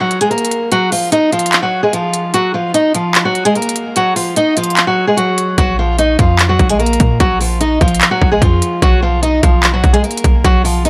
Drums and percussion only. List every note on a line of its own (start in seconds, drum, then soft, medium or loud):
0.11 closed hi-hat medium
0.21 closed hi-hat medium
0.31 closed hi-hat soft
0.38 closed hi-hat medium
0.45 closed hi-hat medium
0.51 closed hi-hat medium
0.72 closed hi-hat medium
0.92 open hi-hat medium
1.12 closed hi-hat medium
1.32 closed hi-hat soft
1.39 closed hi-hat medium
1.46 closed hi-hat medium
1.53 clap loud
1.53 closed hi-hat medium
1.93 closed hi-hat medium
2.14 closed hi-hat medium
2.34 closed hi-hat medium
2.74 closed hi-hat medium
2.95 closed hi-hat medium
3.15 clap loud
3.15 closed hi-hat medium
3.35 closed hi-hat medium
3.45 closed hi-hat medium
3.55 closed hi-hat soft
3.62 closed hi-hat medium
3.69 closed hi-hat medium
3.76 closed hi-hat medium
3.96 closed hi-hat medium
4.16 open hi-hat medium
4.36 closed hi-hat medium
4.57 closed hi-hat medium
4.64 closed hi-hat medium
4.70 closed hi-hat soft
4.77 clap loud
4.77 closed hi-hat medium
5.18 closed hi-hat medium
5.38 closed hi-hat medium
5.58 kick loud
5.58 closed hi-hat medium
5.99 closed hi-hat medium
6.19 kick medium
6.19 closed hi-hat medium
6.39 clap loud
6.39 closed hi-hat medium
6.59 kick medium
6.59 closed hi-hat medium
6.69 closed hi-hat medium
6.80 closed hi-hat soft
6.86 closed hi-hat medium
6.93 closed hi-hat medium
7.00 kick loud
7.00 closed hi-hat medium
7.20 kick loud
7.20 closed hi-hat medium
7.41 open hi-hat medium
7.61 closed hi-hat medium
7.81 kick medium
7.81 closed hi-hat soft
7.88 closed hi-hat medium
7.95 closed hi-hat medium
8.01 clap loud
8.01 closed hi-hat medium
8.22 kick medium
8.42 kick loud
8.42 closed hi-hat medium
8.62 closed hi-hat medium
8.82 kick loud
8.82 closed hi-hat medium
9.23 closed hi-hat medium
9.43 kick medium
9.43 closed hi-hat medium
9.63 clap loud
9.63 closed hi-hat medium
9.84 kick loud
9.84 closed hi-hat medium
9.94 closed hi-hat medium
10.04 closed hi-hat soft
10.11 closed hi-hat medium
10.17 closed hi-hat medium
10.24 kick medium
10.24 closed hi-hat medium
10.45 kick loud
10.45 closed hi-hat medium
10.65 open hi-hat medium
10.85 closed hi-hat medium